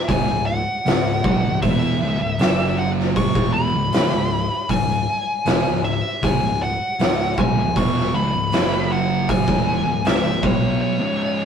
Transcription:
0.08 0.27 C#1 medium
0.08 0.27 C#2 medium
0.08 0.27 G#2 medium
0.08 0.44 G#5 medium
0.08 kick loud
0.08 open hi-hat medium
0.27 0.63 C#1 medium
0.27 0.59 C#2 medium
0.27 0.59 G#2 medium
0.46 1.58 F#5 loud
0.86 1.21 C#1 medium
0.86 1.17 C#2 medium
0.86 1.17 G#2 medium
0.86 snare loud
0.86 open hi-hat medium
1.24 1.42 B1 medium
1.24 1.42 B2 medium
1.24 1.43 F#3 loud
1.24 kick loud
1.43 1.61 C#1 medium
1.43 1.63 C#2 medium
1.43 1.63 G#2 medium
1.62 1.98 E1 medium
1.62 2.00 E2 medium
1.62 2.01 B2 medium
1.62 2.01 E3 medium
1.62 2.81 E5 medium
1.62 kick loud
1.62 open hi-hat medium
2.00 2.18 C#1 medium
2.00 2.20 C#2 medium
2.00 2.20 G#2 loud
2.20 2.38 C#1 medium
2.20 2.39 C#2 medium
2.20 2.39 G#2 medium
2.38 3.31 F#1 medium
2.38 3.34 F#2 medium
2.38 3.35 C#3 medium
2.38 3.35 F#3 loud
2.38 snare loud
2.38 open hi-hat medium
2.79 2.89 F#5 medium
2.99 snare soft
3.16 3.52 C#6 loud
3.16 kick loud
3.16 open hi-hat medium
3.35 3.71 E1 loud
3.35 3.73 E2 medium
3.35 3.73 B2 medium
3.35 3.73 E3 medium
3.35 kick loud
3.54 4.73 B5 loud
3.73 3.91 C#1 medium
3.73 3.93 C#2 medium
3.73 3.93 G#2 medium
3.92 4.11 C#1 medium
3.92 4.10 C#2 medium
3.92 4.11 G#2 loud
3.92 snare loud
3.92 open hi-hat medium
4.11 4.48 C#1 medium
4.11 4.43 C#2 medium
4.11 4.43 G#2 medium
4.69 5.05 C#1 medium
4.69 5.00 C#2 medium
4.69 5.00 G#2 medium
4.69 5.81 G#5 loud
4.69 kick medium
4.69 open hi-hat medium
5.45 5.64 E1 medium
5.45 5.64 E2 medium
5.45 5.64 B2 loud
5.45 snare loud
5.45 open hi-hat medium
5.65 6.01 C#1 medium
5.65 5.96 C#2 medium
5.65 5.96 G#2 medium
5.85 6.24 E5 medium
6.22 6.41 C#1 medium
6.22 6.40 C#2 medium
6.22 6.41 G#2 medium
6.22 6.62 G#5 medium
6.22 kick loud
6.22 open hi-hat medium
6.42 6.78 C#1 medium
6.42 6.73 C#2 medium
6.42 6.73 G#2 medium
6.63 7.39 F#5 loud
6.99 7.35 C#1 medium
6.99 7.30 C#2 medium
6.99 7.30 G#2 medium
6.99 snare loud
6.99 open hi-hat soft
7.38 7.55 B1 medium
7.38 7.56 B2 medium
7.38 7.56 F#3 loud
7.38 7.78 G#5 medium
7.38 kick loud
7.56 7.74 C#1 medium
7.56 7.76 C#2 medium
7.56 7.76 G#2 medium
7.76 8.12 E1 medium
7.76 8.13 E2 loud
7.76 8.14 B2 medium
7.76 8.14 E3 medium
7.76 8.15 C#6 loud
7.76 kick loud
7.76 open hi-hat medium
7.97 snare soft
8.15 8.32 C#1 medium
8.15 8.32 C#2 medium
8.15 8.32 G#2 loud
8.15 8.93 B5 medium
8.33 8.51 C#1 medium
8.33 8.52 C#2 medium
8.33 8.52 G#2 medium
8.52 9.44 F#1 medium
8.52 9.46 F#2 medium
8.52 9.47 C#3 medium
8.52 9.47 F#3 loud
8.52 snare loud
8.52 open hi-hat medium
8.92 9.30 F#5 medium
9.29 10.07 G#5 medium
9.29 kick loud
9.29 open hi-hat medium
9.46 9.83 E1 medium
9.46 9.84 E2 medium
9.46 9.84 B2 medium
9.46 9.85 E3 medium
9.46 kick loud
9.86 10.03 C#1 medium
9.86 10.04 C#2 medium
9.86 10.05 G#2 medium
10.05 10.22 C#1 medium
10.05 10.23 C#2 medium
10.05 10.23 G#2 loud
10.05 10.41 E5 medium
10.05 snare loud
10.05 open hi-hat medium
10.24 10.41 C#1 medium
10.24 10.43 C#2 medium
10.24 10.43 G#2 medium
10.43 10.78 B1 medium
10.43 10.99 B2 loud
10.43 10.99 F#3 loud
10.43 10.99 B3 loud
10.43 10.79 C#5 medium
10.43 kick loud
10.81 11.45 C#5 medium
11.00 11.45 C#2 medium
11.00 11.45 G#2 medium
11.00 11.45 C#3 medium

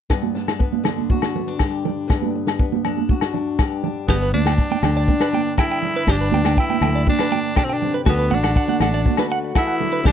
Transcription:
0.10 1.58 G2 medium
0.10 0.59 B3 soft
0.10 kick medium
0.10 snare medium
0.10 low agogo soft
0.23 high conga medium
0.35 0.84 D4 soft
0.35 snare soft
0.48 snare medium
0.48 low agogo medium
0.59 1.36 B3 medium
0.59 kick medium
0.73 high conga medium
0.83 2.83 D3 medium
0.83 1.35 D4 medium
0.83 snare medium
0.83 low conga medium
0.83 low agogo medium
0.98 high conga medium
1.10 1.59 F#4 medium
1.10 kick medium
1.10 high conga medium
1.22 snare medium
1.22 low agogo medium
1.36 1.48 B3 medium
1.36 low conga medium
1.48 1.84 D4 soft
1.59 2.07 G2 medium
1.59 3.10 G4 soft
1.59 kick medium
1.59 snare medium
1.59 low agogo medium
1.85 2.35 D4 medium
1.85 low conga medium
2.08 3.58 G2 medium
2.08 2.59 B3 medium
2.08 kick medium
2.08 snare medium
2.08 low agogo soft
2.22 high conga medium
2.35 muted steel-string acoustic guitar stroke soft
2.47 snare medium
2.47 low agogo medium
2.59 4.06 B3 medium
2.59 kick medium
2.72 high conga medium
2.85 3.32 D4 medium
2.85 low conga medium
2.85 low agogo medium
2.97 high conga medium
3.09 3.59 F#4 medium
3.09 kick medium
3.09 high conga medium
3.21 snare medium
3.21 low agogo medium
3.34 3.82 D4 medium
3.34 low conga medium
3.58 4.06 G2 medium
3.58 4.07 G4 medium
3.58 kick medium
3.58 snare medium
3.58 low agogo medium
3.84 4.05 D4 medium
3.84 low conga medium
4.08 4.31 G1 medium
4.08 5.58 G2 medium
4.08 4.31 B3 medium
4.08 5.09 D4 medium
4.08 4.16 G4 medium
4.08 kick medium
4.08 snare medium
4.08 low conga medium
4.08 low agogo medium
4.22 4.29 B4 medium
4.34 4.57 D2 medium
4.34 6.34 B3 soft
4.34 4.80 D4 medium
4.34 high conga medium
4.45 4.53 G5 medium
4.45 snare medium
4.45 low agogo medium
4.58 kick medium
4.71 4.78 G5 medium
4.71 high conga medium
4.83 5.06 D2 medium
4.83 6.82 D3 medium
4.83 5.54 D4 medium
4.83 4.90 G5 medium
4.83 snare medium
4.83 low conga medium
4.83 low agogo medium
4.96 5.03 D5 medium
4.96 snare soft
5.08 5.84 D4 medium
5.08 kick medium
5.08 high conga medium
5.20 5.28 B4 medium
5.20 snare medium
5.20 low agogo medium
5.33 5.41 G5 medium
5.33 high conga medium
5.58 6.05 G2 medium
5.58 6.12 E4 medium
5.58 5.65 G5 medium
5.58 kick medium
5.58 snare medium
5.58 low agogo medium
5.72 5.78 G5 medium
5.82 6.09 D4 medium
5.82 low conga medium
5.96 6.03 B4 medium
6.07 6.30 G1 medium
6.07 8.04 G2 medium
6.07 6.59 D4 medium
6.07 6.16 G4 medium
6.07 muted steel-string acoustic guitar stroke medium
6.07 kick medium
6.07 snare medium
6.07 low conga medium
6.07 low agogo medium
6.21 6.27 B4 medium
6.32 6.55 D2 loud
6.32 8.05 B3 soft
6.32 6.40 G5 medium
6.32 high conga medium
6.44 6.52 G5 medium
6.44 snare medium
6.44 low agogo medium
6.57 7.05 E4 medium
6.57 6.64 G5 medium
6.57 kick medium
6.70 6.77 G5 medium
6.70 high conga medium
6.81 7.05 D2 medium
6.81 8.04 D3 medium
6.81 6.89 G5 medium
6.81 low conga medium
6.81 low agogo medium
6.95 7.02 D5 medium
7.07 8.30 D4 medium
7.07 7.55 D4 medium
7.07 kick medium
7.07 high conga medium
7.19 7.27 B4 medium
7.19 snare medium
7.19 low agogo medium
7.32 7.39 G5 medium
7.32 high conga medium
7.56 7.82 B2 medium
7.56 7.66 D4 medium
7.56 7.64 G5 medium
7.56 kick medium
7.56 snare medium
7.56 low agogo medium
7.64 7.75 C4 medium
7.69 7.95 D4 medium
7.69 7.76 G5 medium
7.82 8.07 C3 medium
7.82 low conga medium
7.94 8.01 B4 medium
8.06 8.30 D2 medium
8.06 9.54 D3 medium
8.06 8.36 B3 medium
8.06 9.03 F#4 medium
8.06 8.13 F#4 medium
8.06 kick medium
8.06 snare medium
8.06 low conga soft
8.06 low agogo medium
8.19 8.26 B4 medium
8.30 8.54 A1 medium
8.30 8.38 F#5 medium
8.30 muted steel-string acoustic guitar stroke medium
8.30 high conga medium
8.34 8.82 D4 medium
8.44 8.51 F#5 medium
8.44 snare medium
8.44 low agogo medium
8.56 8.63 F#5 medium
8.56 kick medium
8.68 8.76 F#5 medium
8.68 high conga medium
8.80 9.04 A1 medium
8.80 10.02 A3 medium
8.80 9.26 D4 medium
8.80 8.89 F#5 medium
8.80 snare medium
8.80 low conga medium
8.80 low agogo medium
8.94 9.01 D5 medium
9.04 10.02 F#4 medium
9.04 kick medium
9.04 high conga soft
9.17 9.26 B4 medium
9.17 snare medium
9.17 low agogo medium
9.32 9.38 F#5 medium
9.55 9.80 E3 medium
9.55 10.03 E4 medium
9.55 9.63 F#5 medium
9.55 kick medium
9.55 snare medium
9.55 low agogo medium
9.68 9.75 F#5 medium
9.80 10.06 D3 medium
9.80 low conga medium
9.93 10.00 B4 medium
10.03 10.12 C2 medium
10.03 10.12 C3 medium
10.03 10.12 G3 medium
10.03 10.12 D4 medium
10.03 10.12 G4 medium
10.03 kick medium
10.03 snare medium
10.03 low conga medium
10.03 low agogo medium

